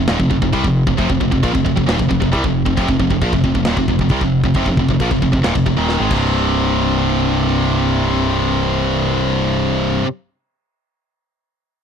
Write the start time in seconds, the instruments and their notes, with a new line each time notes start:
0.07 picked electric bass D#1, distorted electric guitar D#2 A#2, snare, crash
0.19 picked electric bass F1, distorted electric guitar F2 C3, kick
0.30 picked electric bass F1, distorted electric guitar F2 C3, kick
0.42 picked electric bass F1, distorted electric guitar F2 C3, kick
0.53 picked electric bass C2, distorted electric guitar C3 G3, kick, crash
0.64 picked electric bass F1, distorted electric guitar F2 C3, kick
0.87 picked electric bass F1, distorted electric guitar F2 C3, kick
0.97 picked electric bass F1, distorted electric guitar F2 C3, kick, crash
1.09 picked electric bass F1, distorted electric guitar F2 C3, kick
1.20 picked electric bass F1, distorted electric guitar F2 C3, kick
1.31 picked electric bass F1, distorted electric guitar F2 C3, kick
1.43 picked electric bass A#1, distorted electric guitar A#2 F3, kick, crash
1.53 picked electric bass F1, distorted electric guitar F2 C3, kick
1.65 picked electric bass F1, distorted electric guitar F2 C3, kick
1.76 picked electric bass F1, distorted electric guitar F2 C3, kick
1.87 picked electric bass D#1, distorted electric guitar D#2 A#2, snare, crash
1.98 picked electric bass F1, distorted electric guitar F2 C3, kick
2.09 picked electric bass F1, distorted electric guitar F2 C3, kick
2.20 picked electric bass F1, distorted electric guitar F2 C3, kick
2.32 picked electric bass C2, distorted electric guitar C3 G3, kick, crash
2.44 picked electric bass F1, distorted electric guitar F2 C3, kick
2.65 picked electric bass F1, distorted electric guitar F2 C3, kick
2.77 picked electric bass F1, distorted electric guitar F2 C3, kick, crash
2.88 picked electric bass F1, distorted electric guitar F2 C3, kick
2.99 picked electric bass F1, distorted electric guitar F2 C3, kick
3.10 picked electric bass F1, distorted electric guitar F2 C3, kick
3.21 picked electric bass A#1, distorted electric guitar A#2 F3, kick, crash
3.33 picked electric bass F1, distorted electric guitar F2 C3, kick
3.44 picked electric bass F1, distorted electric guitar F2 C3, kick
3.55 picked electric bass F1, distorted electric guitar F2 C3, kick
3.65 picked electric bass D#1, distorted electric guitar D#2 A#2, snare, crash
3.77 picked electric bass F1, distorted electric guitar F2 C3, kick
3.88 picked electric bass F1, distorted electric guitar F2 C3, kick
3.99 picked electric bass F1, distorted electric guitar F2 C3, kick
4.09 picked electric bass C2, distorted electric guitar C3 G3, kick, crash
4.21 picked electric bass F1, distorted electric guitar F2 C3, kick
4.43 picked electric bass F1, distorted electric guitar F2 C3, kick
4.54 picked electric bass F1, distorted electric guitar F2 C3, kick, crash
4.66 picked electric bass F1, distorted electric guitar F2 C3, kick
4.77 picked electric bass F1, distorted electric guitar F2 C3, kick
4.88 picked electric bass F1, distorted electric guitar F2 C3, kick
5.00 picked electric bass A#1, distorted electric guitar A#2 F3, kick, crash
5.11 picked electric bass F1, distorted electric guitar F2 C3, kick
5.22 picked electric bass F1, distorted electric guitar F2 C3, kick
5.32 picked electric bass F1, distorted electric guitar F2 C3, kick
5.43 picked electric bass D#1, distorted electric guitar D#2 A#2, snare, crash
5.55 picked electric bass F1, distorted electric guitar F2 C3, kick
5.66 picked electric bass F1, distorted electric guitar F2 C3, kick
5.77 picked electric bass D#1, distorted electric guitar D#2 A#2 D#3
5.89 snare
5.99 picked electric bass G#1, distorted electric guitar G#2 D#3 G#3
6.10 picked electric bass C1, distorted electric guitar C2 G2 C3, kick, crash